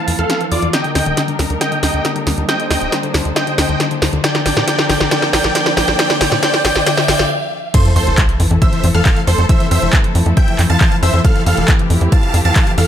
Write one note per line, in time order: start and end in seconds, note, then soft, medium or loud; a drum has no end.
0.00 0.69 F3 medium
0.00 0.69 A3 medium
0.00 0.69 C4 medium
0.00 0.69 E4 medium
0.00 0.69 A4 medium
0.00 0.12 F5 medium
0.00 0.12 A5 loud
0.00 0.12 A6 loud
0.08 0.15 F2 medium
0.08 0.14 E3 medium
0.08 open hi-hat loud
0.19 0.26 F2 medium
0.19 0.25 E3 medium
0.19 0.45 A4 medium
0.19 0.45 F5 loud
0.19 0.45 F6 medium
0.19 closed hi-hat soft
0.30 0.33 E3 medium
0.30 snare medium
0.30 closed hi-hat medium
0.41 0.46 E3 medium
0.41 closed hi-hat soft
0.52 0.59 F2 medium
0.52 0.57 E3 medium
0.52 0.69 F4 medium
0.52 0.69 D5 medium
0.52 0.69 D6 medium
0.52 open hi-hat medium
0.62 0.70 F2 medium
0.62 0.66 E3 medium
0.62 closed hi-hat soft
0.73 0.79 D3 medium
0.73 4.20 G3 medium
0.73 4.20 A#3 medium
0.73 7.26 D4 medium
0.73 4.20 D#4 medium
0.73 2.47 A#4 medium
0.73 0.91 D#5 medium
0.73 0.91 G5 medium
0.73 0.91 G6 medium
0.73 snare medium
0.73 closed hi-hat medium
0.73 riser medium
0.84 0.90 D3 medium
0.84 closed hi-hat soft
0.95 1.03 D#2 medium
0.95 0.99 D3 medium
0.95 1.22 D#5 medium
0.95 1.22 G5 medium
0.95 1.22 G6 medium
0.95 snare medium
0.95 open hi-hat loud
1.06 1.14 D#1 medium
1.06 1.12 D3 medium
1.06 closed hi-hat soft
1.17 1.23 D3 medium
1.17 snare medium
1.17 closed hi-hat medium
1.28 1.32 D3 medium
1.28 closed hi-hat soft
1.39 1.47 D#2 medium
1.39 1.45 D3 medium
1.39 snare medium
1.39 open hi-hat medium
1.50 1.57 D#2 medium
1.50 1.56 D3 medium
1.50 closed hi-hat soft
1.61 1.67 D3 medium
1.61 1.79 D#5 medium
1.61 1.79 G5 loud
1.61 1.79 G6 medium
1.61 snare medium
1.61 closed hi-hat medium
1.72 1.78 D3 medium
1.72 closed hi-hat soft
1.83 1.90 D#2 medium
1.83 1.86 D3 medium
1.83 2.09 D#5 medium
1.83 2.09 G5 medium
1.83 2.09 G6 medium
1.83 snare medium
1.83 open hi-hat loud
1.94 2.01 D#2 medium
1.94 2.00 D3 medium
1.94 closed hi-hat soft
2.05 2.11 D3 medium
2.05 snare medium
2.05 closed hi-hat medium
2.16 2.19 D3 medium
2.16 closed hi-hat soft
2.27 2.34 D#2 medium
2.27 2.33 D3 medium
2.27 snare medium
2.27 open hi-hat medium
2.38 2.45 D#2 medium
2.38 2.43 D3 medium
2.38 closed hi-hat soft
2.48 2.54 D3 medium
2.48 4.22 C5 medium
2.48 2.66 D#5 medium
2.48 2.66 G5 medium
2.48 2.66 G6 medium
2.48 snare medium
2.48 closed hi-hat medium
2.60 2.65 D3 medium
2.60 closed hi-hat soft
2.70 2.78 D#2 medium
2.70 2.74 D3 medium
2.70 2.97 D#5 medium
2.70 2.97 G5 medium
2.70 2.97 G6 medium
2.70 snare medium
2.70 open hi-hat medium
2.81 2.89 D#1 medium
2.81 2.87 D3 medium
2.92 2.98 D3 medium
2.92 snare medium
2.92 closed hi-hat medium
3.03 3.07 D3 medium
3.03 closed hi-hat soft
3.14 3.22 D#2 medium
3.14 3.20 D3 medium
3.14 snare medium
3.14 open hi-hat medium
3.25 3.33 D#2 medium
3.25 3.31 D3 medium
3.25 closed hi-hat soft
3.36 3.42 D3 medium
3.36 3.54 D#5 medium
3.36 3.54 G5 loud
3.36 3.54 G6 loud
3.36 snare medium
3.36 closed hi-hat medium
3.47 3.53 D3 medium
3.47 closed hi-hat soft
3.58 3.66 D#2 loud
3.58 3.62 D3 medium
3.58 3.84 D#5 medium
3.58 3.84 G5 medium
3.58 3.84 G6 medium
3.58 snare medium
3.58 open hi-hat loud
3.69 3.76 D#2 medium
3.69 3.75 D3 medium
3.69 closed hi-hat soft
3.80 3.86 D3 medium
3.80 snare medium
3.80 closed hi-hat medium
3.91 3.94 D3 medium
3.91 closed hi-hat soft
4.02 4.09 D#2 medium
4.02 4.08 D3 medium
4.02 snare medium
4.02 open hi-hat medium
4.13 4.20 D#2 medium
4.13 4.19 D3 medium
4.13 closed hi-hat soft
4.24 4.30 D3 medium
4.24 7.27 F3 medium
4.24 7.27 A#3 medium
4.24 7.27 C4 medium
4.24 5.97 A#4 medium
4.24 4.41 D5 medium
4.24 4.41 G5 loud
4.24 4.41 G6 medium
4.24 snare medium
4.24 closed hi-hat loud
4.35 4.41 D3 medium
4.35 snare medium
4.35 closed hi-hat soft
4.46 4.53 A#1 medium
4.46 4.49 D3 medium
4.46 4.66 D5 medium
4.46 4.66 G5 medium
4.46 4.66 G6 medium
4.46 snare medium
4.46 open hi-hat loud
4.57 4.64 A#2 medium
4.57 4.62 D3 medium
4.57 snare medium
4.57 closed hi-hat soft
4.68 4.73 D3 medium
4.68 4.85 D5 medium
4.68 4.85 G5 loud
4.68 4.85 G6 loud
4.68 snare medium
4.68 closed hi-hat medium
4.79 4.84 D3 medium
4.79 snare medium
4.79 closed hi-hat soft
4.89 4.97 A#1 medium
4.89 4.93 D3 medium
4.89 5.10 D5 medium
4.89 5.10 G5 medium
4.89 5.10 G6 medium
4.89 snare medium
4.89 open hi-hat medium
5.00 5.08 A#1 medium
5.00 5.06 D3 medium
5.00 snare medium
5.00 closed hi-hat soft
5.11 5.17 D3 medium
5.11 5.29 D5 medium
5.11 5.29 G5 loud
5.11 5.29 G6 loud
5.11 snare loud
5.11 closed hi-hat loud
5.22 5.28 D3 medium
5.22 snare medium
5.22 closed hi-hat soft
5.33 5.41 A#1 medium
5.33 5.37 D3 medium
5.33 5.53 D5 medium
5.33 5.53 G5 loud
5.33 5.53 G6 medium
5.33 snare loud
5.33 open hi-hat loud
5.44 5.52 A#1 medium
5.44 5.50 D3 medium
5.44 snare medium
5.44 closed hi-hat soft
5.55 5.61 D3 medium
5.55 5.73 D5 medium
5.55 5.73 G5 loud
5.55 5.73 G6 loud
5.55 snare loud
5.55 closed hi-hat medium
5.66 5.72 D3 medium
5.66 snare medium
5.66 closed hi-hat soft
5.77 5.84 A#1 medium
5.77 5.81 D3 medium
5.77 5.97 D5 medium
5.77 5.97 G5 medium
5.77 5.97 G6 loud
5.77 snare loud
5.77 open hi-hat medium
5.88 5.95 A#1 medium
5.88 5.94 D3 medium
5.88 snare medium
5.99 6.05 D3 medium
5.99 7.29 C5 medium
5.99 6.16 D5 medium
5.99 6.16 G5 loud
5.99 6.16 G6 loud
5.99 snare loud
5.99 closed hi-hat loud
6.10 6.16 D3 medium
6.10 snare medium
6.10 closed hi-hat soft
6.21 6.28 A#1 loud
6.21 6.27 D3 medium
6.21 6.38 D5 medium
6.21 6.38 G5 loud
6.21 6.38 G6 loud
6.21 snare loud
6.21 open hi-hat loud
6.32 6.39 A#2 medium
6.32 6.38 D3 medium
6.32 snare medium
6.32 closed hi-hat soft
6.43 6.49 D3 medium
6.43 6.60 D5 medium
6.43 6.60 G5 loud
6.43 6.60 G6 loud
6.43 snare loud
6.43 closed hi-hat loud
6.54 6.60 D3 medium
6.54 snare medium
6.54 closed hi-hat soft
6.64 6.72 A#1 medium
6.64 6.70 D3 medium
6.64 6.82 D5 medium
6.64 6.82 G5 loud
6.64 6.82 G6 loud
6.64 snare loud
6.64 open hi-hat medium
6.76 6.83 A#1 medium
6.76 6.81 D3 medium
6.76 snare medium
6.76 closed hi-hat soft
6.86 6.92 D3 medium
6.86 7.04 D5 medium
6.86 7.04 G5 loud
6.86 7.04 G6 loud
6.86 snare loud
6.86 closed hi-hat loud
6.97 7.03 D3 medium
6.97 snare medium
6.97 closed hi-hat soft
7.08 7.16 A#1 loud
7.08 7.14 D3 medium
7.08 7.26 D5 medium
7.08 7.26 G5 loud
7.08 7.26 G6 loud
7.08 snare loud
7.08 open hi-hat loud
7.19 7.27 A#1 medium
7.19 7.25 D3 medium
7.19 snare medium
7.19 closed hi-hat soft
7.74 7.78 E3 medium
7.74 12.87 F3 medium
7.74 12.87 A3 medium
7.74 12.87 C4 medium
7.74 12.87 E4 medium
7.74 7.92 A4 medium
7.74 11.21 A4 medium
7.74 7.92 C5 loud
7.74 7.92 C6 medium
7.74 kick loud
7.74 closed hi-hat loud
7.74 crash loud
7.74 sub drop medium
7.85 7.91 E3 medium
7.85 closed hi-hat soft
7.96 8.03 F2 medium
7.96 8.02 E3 medium
7.96 8.22 A4 medium
7.96 8.22 C5 loud
7.96 8.22 C6 loud
7.96 open hi-hat loud
8.07 8.14 F1 medium
8.07 8.10 E3 medium
8.07 closed hi-hat soft
8.18 8.24 E3 medium
8.18 kick loud
8.18 clap loud
8.18 closed hi-hat medium
8.29 8.35 E3 medium
8.29 closed hi-hat soft
8.40 8.47 F2 medium
8.40 8.43 E3 medium
8.40 open hi-hat medium
8.51 8.58 F2 medium
8.51 8.57 E3 medium
8.51 closed hi-hat soft
8.62 8.68 E3 medium
8.62 8.88 C5 medium
8.62 8.88 E5 medium
8.62 8.88 E6 loud
8.62 kick loud
8.62 closed hi-hat loud
8.73 8.76 E3 medium
8.73 closed hi-hat soft
8.83 8.91 F2 medium
8.83 8.89 E3 medium
8.83 open hi-hat loud
8.95 9.02 F2 medium
8.95 9.00 E3 medium
8.95 9.21 A4 medium
8.95 9.21 F5 loud
8.95 9.21 F6 medium
8.95 closed hi-hat soft
9.05 kick loud
9.05 clap loud
9.05 closed hi-hat medium
9.16 9.22 E3 medium
9.16 closed hi-hat soft
9.27 9.35 F2 loud
9.27 9.33 E3 medium
9.27 9.45 A4 medium
9.27 9.45 C5 medium
9.27 9.45 C6 medium
9.27 open hi-hat medium
9.38 9.46 F2 medium
9.38 9.42 E3 medium
9.38 closed hi-hat soft
9.49 9.55 E3 medium
9.49 9.67 C5 medium
9.49 9.67 E5 medium
9.49 9.67 E6 loud
9.49 kick loud
9.49 closed hi-hat loud
9.60 9.66 E3 medium
9.60 closed hi-hat soft
9.71 9.79 F2 loud
9.71 9.75 E3 medium
9.71 9.97 C5 medium
9.71 9.97 E5 loud
9.71 9.97 E6 medium
9.71 open hi-hat loud
9.82 9.90 F1 medium
9.82 9.88 E3 medium
9.82 closed hi-hat soft
9.93 9.99 E3 medium
9.93 kick loud
9.93 clap loud
9.93 closed hi-hat medium
10.04 10.08 E3 medium
10.04 closed hi-hat soft
10.15 10.22 F2 loud
10.15 10.21 E3 medium
10.15 open hi-hat medium
10.26 10.33 F2 medium
10.26 10.32 E3 medium
10.26 closed hi-hat soft
10.37 10.40 E3 medium
10.37 10.63 E5 medium
10.37 10.63 G5 loud
10.37 10.63 G6 loud
10.37 kick loud
10.37 closed hi-hat medium
10.48 10.54 E3 medium
10.48 closed hi-hat soft
10.59 10.66 F2 loud
10.59 10.65 E3 medium
10.59 clap medium
10.59 open hi-hat loud
10.70 10.77 F2 medium
10.70 10.73 E3 medium
10.70 10.96 F5 medium
10.70 10.96 A5 loud
10.70 10.96 A6 medium
10.70 closed hi-hat soft
10.81 10.87 E3 medium
10.81 kick loud
10.81 clap loud
10.81 closed hi-hat medium
10.92 10.97 E3 medium
10.92 closed hi-hat soft
11.03 11.10 F2 loud
11.03 11.06 E3 medium
11.03 11.20 C5 medium
11.03 11.20 E5 medium
11.03 11.20 E6 medium
11.03 open hi-hat loud
11.13 11.21 F2 medium
11.13 11.19 E3 medium
11.13 closed hi-hat soft
11.24 11.30 E3 medium
11.24 12.87 G4 medium
11.24 11.42 A4 medium
11.24 11.42 F5 loud
11.24 11.42 F6 loud
11.24 kick loud
11.24 closed hi-hat medium
11.35 11.39 E3 medium
11.35 closed hi-hat soft
11.46 11.54 F2 medium
11.46 11.52 E3 medium
11.46 11.73 A4 medium
11.46 11.73 F5 loud
11.46 11.73 F6 loud
11.46 open hi-hat loud
11.57 11.65 F1 medium
11.57 11.63 E3 medium
11.57 closed hi-hat soft
11.68 11.72 E3 medium
11.68 kick loud
11.68 clap loud
11.68 closed hi-hat medium
11.79 11.85 E3 medium
11.79 closed hi-hat soft
11.90 11.98 F2 loud
11.90 11.96 E3 medium
11.90 open hi-hat medium
12.01 12.09 F2 medium
12.01 12.05 E3 medium
12.01 closed hi-hat soft
12.12 12.18 E3 medium
12.12 12.38 F5 medium
12.12 12.38 A5 medium
12.12 12.38 A6 medium
12.12 kick loud
12.12 closed hi-hat medium
12.23 12.29 E3 medium
12.23 closed hi-hat soft
12.34 12.41 F2 medium
12.34 12.38 E3 medium
12.34 open hi-hat loud
12.45 12.52 F2 medium
12.45 12.51 E3 medium
12.45 12.71 F5 medium
12.45 12.71 A5 loud
12.45 12.71 A6 medium
12.45 closed hi-hat soft
12.56 12.62 E3 medium
12.56 kick loud
12.56 clap loud
12.56 closed hi-hat medium
12.67 12.70 E3 medium
12.67 closed hi-hat soft
12.78 12.85 F2 medium
12.78 12.84 E3 medium
12.78 12.87 A4 medium
12.78 12.87 F5 medium
12.78 12.87 F6 medium
12.78 open hi-hat loud